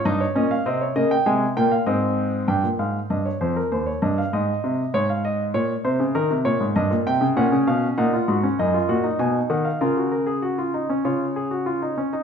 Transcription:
<<
  \new Staff \with { instrumentName = "Grand piano" } { \time 4/4 \key ees \dorian \tempo 4 = 98 << { ees''16 des''16 ees''16 f''16 ees''16 des''16 ees''16 g''16 aes''8 g''16 f''16 ees''4 | g''8 f''8 ees''16 des''16 c''16 bes'16 c''16 des''16 ees''16 f''16 ees''4 | des''16 f''16 ees''8 des''8 c''8 bes'8 des''8 ees''8 g''8 | \key fis \major fis''8 eis''8 fis''4 dis''4 gis''8 fis''16 eis''16 |
ais'2 cis''4. r8 | } \\ { ees'8 des'8 c'8 bes8 aes8 bes8 c'4 | r1 | r1 | cis'4 dis'16 eis'16 fis'16 cis'16 dis'16 eis'16 fis'16 dis'4~ dis'16 |
eis'16 fis'16 ais'16 gis'16 fis'16 eis'16 dis'16 cis'16 eis'8 gis'16 fis'16 eis'16 dis'16 cis'16 dis'16 | } >> }
  \new Staff \with { instrumentName = "Grand piano" } { \clef bass \time 4/4 \key ees \dorian g,8 bes,8 c8 des8 c8 bes,8 aes,4 | g,16 bes,16 aes,8 g,8 f,8 ees,8 g,8 aes,8 c8 | aes,4 bes,8 c16 des16 ees16 c16 bes,16 aes,16 g,16 bes,16 c16 des16 | \key fis \major ais,16 cis16 b,8 ais,8 gis,8 fis,8 ais,8 b,8 dis8 |
cis2 cis4. r8 | }
>>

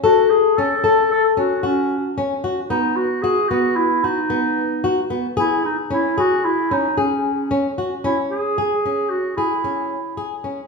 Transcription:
<<
  \new Staff \with { instrumentName = "Clarinet" } { \time 5/4 \key cis \minor \tempo 4 = 112 fis'8 gis'8 a'4 a'8 fis'8 cis'4 r4 | dis'8 fis'8 gis'8 fis'8 e'8 dis'2 r8 | e'8 dis'8 e'8 fis'8 e'8 dis'8 cis'4. r8 | e'8 gis'4. fis'8 e'2 r8 | }
  \new Staff \with { instrumentName = "Nylon-string guitar" } { \time 5/4 \key cis \minor a'4 cis'8 a'4 cis'8 fis'4 cis'8 fis'8 | b4 fis'8 b4 fis'8 b4 fis'8 b8 | gis'4 cis'8 gis'4 cis'8 gis'4 cis'8 fis'8 | cis'4 gis'8 cis'4 gis'8 cis'4 gis'8 cis'8 | }
>>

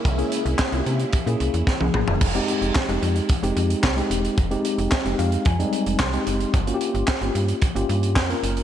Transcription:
<<
  \new Staff \with { instrumentName = "Tine electric piano" } { \time 4/4 \key f \minor \tempo 4 = 111 << { r1 | r1 | r4. f''8 aes''4 c'''4 | r1 | } \\ { r16 <bes des' e' aes'>8. r16 <bes des' e' f' g'>8. r16 <bes des' e' aes'>8. r16 <bes des' e' aes'>8. | r16 <aes c' ees' g'>8. r16 <aes c' ees' g'>8. r16 <aes c' ees' g'>8. r16 <aes c' ees' g'>8. | r16 <aes c' ees' g'>8. r16 <aes c' ees' g'>8. r16 <g aes c' ees'>8. r16 <aes c' ees' g'>8. | r16 <bes des' f' ges' g'>8. r16 <bes des' f' g'>8. r16 <bes des' f' g'>8. r16 <bes des' f' bes'>8. | } >> }
  \new Staff \with { instrumentName = "String machine" } { \time 4/4 \key f \minor <des aes bes e'>1 | r1 | r1 | r1 | }
  \new Staff \with { instrumentName = "FM bass" } { \clef bass \time 4/4 \key f \minor c,8 r16 c,16 r16 c,16 c8 r16 bes,16 c,16 e,16 r16 c,16 bes,,16 e,,16 | f,,8 r16 f,,16 r16 f,,16 f,8 r16 f,,16 f,8 c,8 e,,8 | f,,8 r16 f,,16 r16 f,,16 f,8 f,8 r16 f,,16 c,8 ges,,8 | g,,8 r16 g,,16 r16 g,,16 g,8 r16 g,,16 g,8 f,8 ges,,8 | }
  \new DrumStaff \with { instrumentName = "Drums" } \drummode { \time 4/4 <hh bd>16 hh16 hh16 hh16 <hc bd sn>16 hh16 hh16 hh16 <hh bd>16 hh16 hh16 hh16 <bd sn>16 tommh16 toml16 tomfh16 | <cymc bd>16 hh16 hh16 hh16 <hc bd sn>16 hh16 hh16 hh16 <hh bd>16 hh16 hh16 hh16 <hc bd sn>16 hh16 hh16 hh16 | <hh bd>16 hh16 hh16 hh16 <hc bd sn>16 hh16 hh16 hh16 <hh bd>16 hh16 hh16 hh16 <hc bd sn>16 hh16 hh16 hh16 | <hh bd>16 hh16 hh16 hh16 <hc bd sn>16 hh16 hh16 hh16 <hh bd>16 hh16 hh16 hh16 <hc bd sn>16 hh16 hh16 hh16 | }
>>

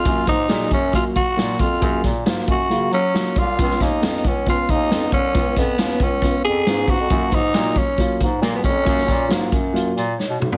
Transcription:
<<
  \new Staff \with { instrumentName = "Tenor saxophone" } { \time 4/4 \key ges \major \tempo 4 = 136 f'8 ees'4 des'8 f'8 ges'4 f'8~ | f'8 r4 ges'4 des'4 f'8~ | f'8 ees'4 des'8 f'8 ees'4 des'8~ | des'8 ces'4 des'4 aes'4 ges'8~ |
ges'8 ees'4 des'4 r8 bes16 ces'16 des'8~ | des'4. r2 r8 | }
  \new Staff \with { instrumentName = "Upright piano" } { \time 4/4 \key ges \major <ges bes f'>8 r8 <ges bes aes'>8 r8 <ges bes ges'>8 r8 <ges bes f'>8 r8 | <ges bes aes'>8 r8 <ges bes f'>8 r8 <ges bes f'>8 r8 <ges bes f'>8 r8 | <ces' des' f'>8 r8 <ces' des' f'>8 r8 <ces' des' f'>8 r8 <ces' des' f'>8 r8 | <ces' des' f'>8 r8 <ces' des' f'>8 r8 <ces' des' f'>8 r8 <ces' des' f'>8 r8 |
<ges bes f'>8 r8 <ges bes f'>8 r8 <ges bes f'>8 r8 <ges bes f'>8 r8 | <ges bes f'>8 r8 <ges bes f'>8 r8 <ges bes f'>8 r8 des''8 ges'8 | }
  \new Staff \with { instrumentName = "Bass clarinet" } { \clef bass \time 4/4 \key ges \major ges,8 aes,8 bes,8 ges,4 r8 bes,8 f,8 | ges,8 bes,8 aes,8 ges,8 des8 ges4 c,8 | des,8 ees,8 f,8 des,4 ees,8 f,8 c,8 | des,8 f,8 ees,8 des,4 f,8 aes,8. f,16 |
ges,8 aes,8 bes,8 r4 aes,8 bes,8 f,8 | ges,8 bes,8 aes,8 ges,4 bes,8 r16 ces16 ces,16 c,16 | }
  \new DrumStaff \with { instrumentName = "Drums" } \drummode { \time 4/4 <hh bd>8 <hh bd sn>8 <hh sn>16 sn16 <hh bd>8 <hh bd>8 <hh bd>8 <hh sn>8 <hh bd>8 | <hh bd>8 <hh bd sn>8 <hh sn>16 sn16 <hh bd>8 hh8 hh8 <hh sn>8 <hh bd>8 | <hh bd>16 sn16 <hh bd sn>8 <hh sn>16 sn16 <hh bd>8 <hh bd>8 <hh bd>8 <hh sn>8 <hh bd>8 | <hh bd>8 <hh bd sn>8 <hh sn>16 sn16 <hh bd>8 <hh bd>8 hh8 <hh sn>8 <hho bd>8 |
<hh bd>8 <hh bd>8 <hh sn>16 sn16 <hh bd>8 <hh bd>8 <hh bd>8 <hh sn>8 <hh bd>8 | <hh bd>16 sn16 <hh bd sn>8 <hh sn>8 <hh bd>8 hh8 hh8 sn8 toml16 tomfh16 | }
>>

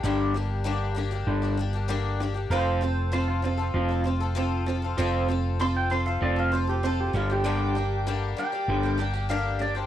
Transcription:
<<
  \new Staff \with { instrumentName = "Tonewheel organ" } { \time 4/4 \key g \minor \tempo 4 = 97 r1 | r1 | r1 | <bes' g'' d'''>1 | }
  \new Staff \with { instrumentName = "Pedal steel guitar" } { \time 4/4 \key g \minor g'8 r2. r8 | c''4 c''16 f'16 f'2~ f'8~ | f'8 r8 c'''16 g''16 c'''16 f''16 d''16 f''16 c''16 g'16 c''16 g'16 f'16 g'16 | g'4 r8 g''4. f''8 d''16 c''16 | }
  \new Staff \with { instrumentName = "Twelve-string acoustic guitar" } { \time 4/4 \key g \minor <g, d g bes d' g'>8 <g bes d' g'>8 <g, d g bes d' g'>8 <g bes d' g'>16 <g bes d' g'>8 <g bes d' g'>16 <g bes d' g'>16 <g bes d' g'>16 <g, d g bes d' g'>8 <g bes d' g'>16 <g bes d' g'>16 | <f c' f' a'>8 <f c' f' a'>8 <f c' f' a'>8 <f c' f' a'>16 <c' f' a'>8 <c' f' a'>16 <f c' f' a'>16 <c' f' a'>16 <f c' f' a'>8 <f c' f' a'>16 <c' f' a'>16 | <f c' f' a'>8 <f c' f' a'>8 <f c' f' a'>8 <f c' f' a'>16 <c' f' a'>8 <c' f' a'>16 <f c' f' a'>16 <c' f' a'>16 <f c' f' a'>8 <g bes d' g'>16 <g bes d' g'>16 | <g, d g bes d' g'>8 <g bes d' g'>8 <g, d g bes d' g'>8 <g bes d' g'>16 <g bes d' g'>8 <g bes d' g'>16 <g bes d' g'>16 <g bes d' g'>16 <g, d g bes d' g'>8 <g bes d' g'>16 <g bes d' g'>16 | }
  \new Staff \with { instrumentName = "Clean electric guitar" } { \clef bass \time 4/4 \key g \minor <g, d g>8 <g, d>8 <g, d>8 <g, d>8 <g, d g>8 <g, d>8 <g, d>8 <g, d>8 | <f c' f'>8 <f c'>8 <f c'>8 <f c'>8 <f c' f'>8 <f c'>8 <f c'>8 <f c'>8 | <f c' f'>8 <f c'>8 <f c'>8 <f c'>8 <f c' f'>8 <f c'>8 <f c'>8 <g, d g>8 | <g, d g>8 <g, d>8 <g, d>8 <g, d>8 <g, d g>8 <g, d>8 <g, d>8 <g, d>8 | }
  \new Staff \with { instrumentName = "Fingered electric bass" } { \clef bass \time 4/4 \key g \minor g,,2 g,,2 | f,,2 f,,2 | f,,2 f,,4. g,,8~ | g,,4. r8 g,,2 | }
>>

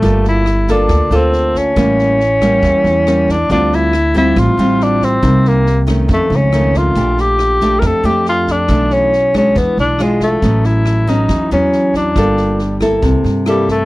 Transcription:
<<
  \new Staff \with { instrumentName = "Tenor saxophone" } { \time 4/4 \key a \phrygian \tempo 4 = 138 a8 e'4 d'4 c'4 des'8~ | des'2.~ des'8 d'8 | d'8 e'4 e'8 f'4 d'8 c'8~ | c'8 bes8.~ bes32 r8 r32 a8 cis'4 f'8~ |
f'8 g'4~ g'16. bes'32 a'8 g'8 f'8 d'8~ | d'8 cis'4 cis'8 b8 d'8 gis8 a8~ | a8 e'4 ees'4 cis'4 d'8~ | d'4. r4. g8 a8 | }
  \new Staff \with { instrumentName = "Nylon-string guitar" } { \time 4/4 \key a \phrygian << { <bes f' a'>4 r8 <bes f' a'>4 <bes f' a'>4. | <g bes cis'>4 r8 <g bes cis'>4. <g bes cis'>8 r8 | <g c' f'>4 r8 <g c' f'>4 <g c' f'>4. | <g bes ees'>4 r8 <ees a des'>4. <ees a cis'>4 |
<a d' g'>4. <a d' g'>4 <a d' g'>4. | <e a d'>4 r8 <aes d'>4. <gis d' f'>4 | <fis b cis'>4. <fis b cis'>4 <fis b cis'>4. | <bes f' a'>4 r8 <bes e' a'>4. <bes e' a'>8 r8 | } \\ { g2 d2 | a,2 e2 | d2 a,2 | c2 f,2 |
bes,2 f,2 | b,2 e2 | a,2 e2 | g2 c2 | } >> }
  \new Staff \with { instrumentName = "Upright bass" } { \clef bass \time 4/4 \key a \phrygian g,,2 d,16 r16 d,4. | a,,2 e,16 r16 e,4. | d,2 a,,16 r16 a,,4. | c,2 f,16 r16 cis,4. |
bes,,2 f,16 r16 f,4. | b,,2 e,16 r16 b,,4. | a,,2 e,16 r16 e,4. | g,,2 c,16 r16 g,4. | }
  \new DrumStaff \with { instrumentName = "Drums" } \drummode { \time 4/4 <bd sn>8 sn8 <ss sn>8 <bd sn>8 <bd ss sn>8 sn8 sn8 <bd sn>8 | <bd ss sn>8 sn8 sn8 <bd ss sn>8 <bd sn>8 sn8 <ss sn>8 <bd sn>8 | <bd sn>8 sn8 <ss sn>8 <bd sn>8 <bd ss sn>8 sn8 sn8 <bd sn>8 | <bd ss sn>8 sn8 sn8 <bd ss sn>8 <bd sn>8 sn8 <ss sn>8 <bd sn>8 |
<bd sn>8 sn8 <ss sn>8 <bd sn>8 <bd ss sn>8 sn8 sn8 <bd sn>8 | <bd ss sn>8 sn8 sn8 <bd ss sn>8 <bd sn>8 sn8 <ss sn>8 <bd sn>8 | <bd sn>8 sn8 <ss sn>8 <bd sn>8 <bd ss sn>8 sn8 sn8 <bd sn>8 | <bd ss sn>8 sn8 sn8 <bd ss sn>8 <bd sn>8 sn8 <ss sn>8 <bd sn>8 | }
>>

